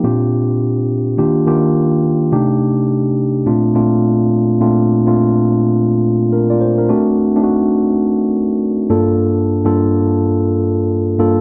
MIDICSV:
0, 0, Header, 1, 2, 480
1, 0, Start_track
1, 0, Tempo, 571429
1, 34, Time_signature, 4, 2, 24, 8
1, 9582, End_track
2, 0, Start_track
2, 0, Title_t, "Tine electric piano"
2, 0, Program_c, 0, 4
2, 0, Control_c, 0, 64, 127
2, 28, Note_on_c, 0, 46, 86
2, 32, Note_on_c, 0, 60, 73
2, 33, Note_on_c, 0, 62, 74
2, 36, Note_on_c, 0, 65, 71
2, 39, Note_on_c, 0, 67, 96
2, 46, Control_c, 0, 64, 0
2, 210, Control_c, 0, 64, 127
2, 926, Note_off_c, 0, 46, 0
2, 928, Note_off_c, 0, 60, 0
2, 929, Note_off_c, 0, 62, 0
2, 930, Note_off_c, 0, 65, 0
2, 931, Note_off_c, 0, 67, 0
2, 986, Note_on_c, 0, 51, 74
2, 989, Note_on_c, 0, 58, 74
2, 991, Note_on_c, 0, 62, 70
2, 993, Note_on_c, 0, 65, 69
2, 996, Note_on_c, 0, 67, 88
2, 1006, Control_c, 0, 64, 0
2, 1174, Control_c, 0, 64, 127
2, 1214, Note_off_c, 0, 51, 0
2, 1215, Note_off_c, 0, 58, 0
2, 1216, Note_off_c, 0, 62, 0
2, 1217, Note_off_c, 0, 65, 0
2, 1219, Note_off_c, 0, 67, 0
2, 1228, Note_on_c, 0, 51, 88
2, 1232, Note_on_c, 0, 58, 76
2, 1234, Note_on_c, 0, 62, 72
2, 1237, Note_on_c, 0, 65, 79
2, 1239, Note_on_c, 0, 67, 91
2, 1902, Note_off_c, 0, 51, 0
2, 1904, Note_off_c, 0, 58, 0
2, 1905, Note_off_c, 0, 62, 0
2, 1906, Note_off_c, 0, 65, 0
2, 1908, Note_off_c, 0, 67, 0
2, 1947, Note_on_c, 0, 48, 87
2, 1949, Note_on_c, 0, 57, 75
2, 1952, Note_on_c, 0, 62, 79
2, 1954, Note_on_c, 0, 63, 73
2, 1956, Note_on_c, 0, 67, 91
2, 1965, Control_c, 0, 64, 0
2, 2131, Control_c, 0, 64, 127
2, 2845, Note_off_c, 0, 48, 0
2, 2846, Note_off_c, 0, 57, 0
2, 2848, Note_off_c, 0, 62, 0
2, 2849, Note_off_c, 0, 63, 0
2, 2850, Note_off_c, 0, 67, 0
2, 2906, Note_on_c, 0, 46, 79
2, 2908, Note_on_c, 0, 57, 72
2, 2910, Note_on_c, 0, 60, 69
2, 2913, Note_on_c, 0, 62, 75
2, 2914, Note_on_c, 0, 65, 88
2, 2926, Control_c, 0, 64, 0
2, 3099, Control_c, 0, 64, 127
2, 3134, Note_off_c, 0, 46, 0
2, 3135, Note_off_c, 0, 57, 0
2, 3136, Note_off_c, 0, 60, 0
2, 3137, Note_off_c, 0, 62, 0
2, 3138, Note_off_c, 0, 65, 0
2, 3146, Note_on_c, 0, 46, 78
2, 3149, Note_on_c, 0, 57, 69
2, 3150, Note_on_c, 0, 60, 72
2, 3154, Note_on_c, 0, 62, 74
2, 3156, Note_on_c, 0, 65, 87
2, 3821, Note_off_c, 0, 46, 0
2, 3823, Note_off_c, 0, 57, 0
2, 3823, Note_off_c, 0, 60, 0
2, 3825, Note_off_c, 0, 62, 0
2, 3826, Note_off_c, 0, 65, 0
2, 3867, Note_on_c, 0, 46, 85
2, 3868, Note_on_c, 0, 57, 80
2, 3871, Note_on_c, 0, 60, 76
2, 3875, Note_on_c, 0, 62, 75
2, 3876, Note_on_c, 0, 65, 88
2, 3883, Control_c, 0, 64, 0
2, 4020, Control_c, 0, 64, 127
2, 4220, Note_off_c, 0, 46, 0
2, 4221, Note_off_c, 0, 57, 0
2, 4222, Note_off_c, 0, 60, 0
2, 4224, Note_off_c, 0, 62, 0
2, 4225, Note_off_c, 0, 65, 0
2, 4256, Note_on_c, 0, 46, 82
2, 4256, Note_on_c, 0, 57, 74
2, 4259, Note_on_c, 0, 60, 77
2, 4262, Note_on_c, 0, 62, 77
2, 4265, Note_on_c, 0, 65, 95
2, 5109, Note_off_c, 0, 46, 0
2, 5109, Note_off_c, 0, 57, 0
2, 5110, Note_off_c, 0, 60, 0
2, 5112, Note_off_c, 0, 62, 0
2, 5114, Note_off_c, 0, 65, 0
2, 5313, Note_on_c, 0, 70, 66
2, 5318, Note_on_c, 0, 62, 53
2, 5458, Note_off_c, 0, 70, 0
2, 5460, Note_off_c, 0, 62, 0
2, 5460, Note_on_c, 0, 74, 73
2, 5466, Note_on_c, 0, 65, 57
2, 5547, Note_off_c, 0, 74, 0
2, 5550, Note_off_c, 0, 65, 0
2, 5552, Note_on_c, 0, 72, 67
2, 5697, Note_off_c, 0, 72, 0
2, 5697, Note_on_c, 0, 70, 58
2, 5703, Note_on_c, 0, 62, 49
2, 5778, Note_off_c, 0, 62, 0
2, 5784, Note_on_c, 0, 57, 81
2, 5787, Note_on_c, 0, 60, 76
2, 5788, Note_on_c, 0, 62, 82
2, 5792, Note_on_c, 0, 66, 89
2, 5806, Control_c, 0, 64, 0
2, 5929, Note_off_c, 0, 70, 0
2, 5947, Control_c, 0, 64, 127
2, 6138, Note_off_c, 0, 57, 0
2, 6140, Note_off_c, 0, 60, 0
2, 6141, Note_off_c, 0, 62, 0
2, 6143, Note_off_c, 0, 66, 0
2, 6179, Note_on_c, 0, 57, 84
2, 6183, Note_on_c, 0, 60, 75
2, 6186, Note_on_c, 0, 62, 79
2, 6192, Note_on_c, 0, 63, 70
2, 6229, Note_off_c, 0, 63, 0
2, 6245, Note_on_c, 0, 66, 91
2, 7031, Note_off_c, 0, 57, 0
2, 7033, Note_off_c, 0, 60, 0
2, 7034, Note_off_c, 0, 62, 0
2, 7063, Note_off_c, 0, 66, 0
2, 7470, Note_on_c, 0, 43, 85
2, 7473, Note_on_c, 0, 58, 78
2, 7475, Note_on_c, 0, 62, 83
2, 7478, Note_on_c, 0, 65, 74
2, 7480, Note_on_c, 0, 69, 92
2, 7483, Control_c, 0, 64, 0
2, 7617, Control_c, 0, 64, 127
2, 8034, Note_off_c, 0, 43, 0
2, 8035, Note_off_c, 0, 58, 0
2, 8036, Note_off_c, 0, 62, 0
2, 8037, Note_off_c, 0, 65, 0
2, 8039, Note_off_c, 0, 69, 0
2, 8105, Note_on_c, 0, 43, 82
2, 8106, Note_on_c, 0, 58, 70
2, 8110, Note_on_c, 0, 62, 73
2, 8111, Note_on_c, 0, 65, 82
2, 8114, Note_on_c, 0, 69, 93
2, 8953, Note_off_c, 0, 43, 0
2, 8954, Note_off_c, 0, 58, 0
2, 8956, Note_off_c, 0, 62, 0
2, 8957, Note_off_c, 0, 65, 0
2, 8958, Note_off_c, 0, 69, 0
2, 9394, Note_on_c, 0, 43, 77
2, 9397, Note_on_c, 0, 58, 81
2, 9400, Note_on_c, 0, 62, 69
2, 9403, Note_on_c, 0, 65, 79
2, 9405, Note_on_c, 0, 69, 90
2, 9582, Note_off_c, 0, 43, 0
2, 9582, Note_off_c, 0, 58, 0
2, 9582, Note_off_c, 0, 62, 0
2, 9582, Note_off_c, 0, 65, 0
2, 9582, Note_off_c, 0, 69, 0
2, 9582, End_track
0, 0, End_of_file